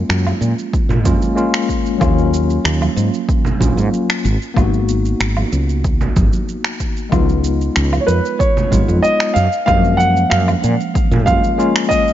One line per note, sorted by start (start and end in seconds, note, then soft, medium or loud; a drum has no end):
0.00 1.01 G#3 medium
0.00 1.02 A#3 medium
0.00 1.03 C#4 medium
0.00 1.03 F4 medium
0.09 0.32 F#2 medium
0.09 finger snap medium
0.09 shaker soft
0.27 high conga medium
0.27 low woodblock medium
0.27 shaker soft
0.41 0.53 A#2 medium
0.41 shaker medium
0.59 shaker soft
0.73 kick loud
0.73 shaker soft
0.89 1.05 A#2 medium
0.89 low conga medium
0.89 shaker soft
1.04 1.17 F#2 medium
1.04 1.33 G#3 medium
1.04 1.33 A#3 medium
1.04 1.34 C#4 medium
1.04 1.34 F4 medium
1.04 kick loud
1.04 high conga medium
1.04 shaker medium
1.22 shaker soft
1.35 1.97 G#3 medium
1.35 1.97 A#3 medium
1.35 1.97 C#4 medium
1.35 1.98 F4 medium
1.35 shaker soft
1.54 finger snap medium
1.69 kick medium
1.69 shaker medium
1.86 shaker soft
1.98 2.57 D#2 medium
1.98 3.56 F#3 medium
1.98 3.57 A#3 medium
1.98 3.57 C#4 medium
1.98 kick loud
1.98 high conga medium
1.98 low woodblock medium
1.98 shaker soft
2.02 3.58 F4 medium
2.18 shaker soft
2.34 shaker medium
2.50 shaker soft
2.64 2.87 D#2 medium
2.64 finger snap medium
2.64 shaker soft
2.81 high conga medium
2.81 low woodblock medium
2.81 shaker soft
2.96 3.08 G#2 medium
2.96 shaker medium
3.14 shaker soft
3.29 kick loud
3.29 shaker soft
3.45 low conga medium
3.45 shaker soft
3.59 3.72 A#1 medium
3.59 4.22 F#3 medium
3.59 4.23 A#3 medium
3.59 4.23 C#4 medium
3.59 4.23 F4 medium
3.59 kick medium
3.59 high conga loud
3.59 shaker medium
3.77 3.88 G#2 medium
3.77 shaker soft
3.94 shaker soft
4.10 finger snap medium
4.10 shaker soft
4.25 4.36 G#1 medium
4.25 shaker medium
4.42 shaker soft
4.54 5.12 G#1 medium
4.54 6.11 A#3 medium
4.54 6.12 B3 medium
4.54 6.13 D#4 medium
4.54 kick loud
4.54 high conga medium
4.54 low woodblock medium
4.54 shaker soft
4.58 6.14 F#4 medium
4.74 shaker soft
4.89 shaker medium
5.05 shaker soft
5.20 5.42 G#1 medium
5.20 finger snap medium
5.20 shaker soft
5.37 high conga medium
5.37 low woodblock medium
5.37 shaker soft
5.52 6.01 C#2 medium
5.52 shaker medium
5.69 shaker soft
5.84 kick loud
5.84 shaker soft
6.01 6.18 B1 medium
6.01 low conga medium
6.01 shaker soft
6.16 6.27 G#1 medium
6.16 kick loud
6.16 high conga medium
6.16 shaker medium
6.33 shaker soft
6.49 shaker soft
6.64 finger snap medium
6.64 shaker soft
6.80 kick medium
6.80 shaker medium
6.97 shaker soft
7.09 7.68 C#2 medium
7.09 8.67 G#3 medium
7.09 8.67 B3 medium
7.09 8.68 D#4 medium
7.09 kick loud
7.09 high conga medium
7.09 low woodblock medium
7.09 shaker soft
7.14 8.69 F4 medium
7.29 shaker soft
7.44 shaker medium
7.61 shaker soft
7.76 7.98 C#2 medium
7.76 finger snap medium
7.76 shaker soft
7.93 high conga medium
7.93 low woodblock medium
7.93 shaker soft
8.01 8.08 C#5 medium
8.07 8.19 F2 medium
8.07 8.37 B4 medium
8.07 shaker medium
8.25 shaker soft
8.39 8.99 C#5 medium
8.39 kick loud
8.39 shaker soft
8.57 low conga medium
8.57 shaker soft
8.71 8.83 G#1 medium
8.71 9.33 G#3 medium
8.71 9.34 B3 medium
8.71 9.34 D#4 medium
8.71 9.34 F4 medium
8.71 kick medium
8.71 high conga medium
8.71 shaker medium
8.88 8.99 F2 medium
8.88 shaker soft
9.03 9.33 D#5 loud
9.03 shaker soft
9.20 finger snap medium
9.20 shaker soft
9.34 9.47 F#2 medium
9.34 9.64 F5 loud
9.34 shaker medium
9.53 shaker soft
9.66 10.24 F#2 medium
9.66 11.23 G#3 medium
9.66 11.23 A#3 medium
9.66 11.24 C#4 medium
9.66 10.00 F5 loud
9.66 kick loud
9.66 high conga medium
9.66 low woodblock medium
9.66 shaker soft
9.70 11.25 F3 medium
9.85 shaker soft
9.97 10.31 F#5 loud
9.97 shaker medium
10.17 shaker soft
10.30 10.53 F#2 medium
10.30 11.24 F5 loud
10.30 finger snap medium
10.30 shaker soft
10.48 high conga medium
10.48 low woodblock medium
10.48 shaker soft
10.64 10.75 A#2 medium
10.64 shaker medium
10.80 shaker soft
10.95 kick loud
10.95 shaker soft
11.11 11.27 A#2 medium
11.11 low conga medium
11.11 shaker soft
11.26 11.38 F#2 medium
11.26 11.55 G#3 medium
11.26 11.55 A#3 medium
11.26 11.56 C#4 medium
11.26 11.56 F4 medium
11.26 11.92 F5 loud
11.26 kick medium
11.26 high conga medium
11.26 shaker medium
11.44 shaker soft
11.58 12.13 G#3 medium
11.58 12.13 A#3 medium
11.58 12.13 C#4 medium
11.58 12.13 F4 medium
11.58 shaker soft
11.76 finger snap medium
11.76 shaker soft
11.89 12.13 D#5 loud
11.89 kick medium
11.89 shaker medium
12.08 shaker soft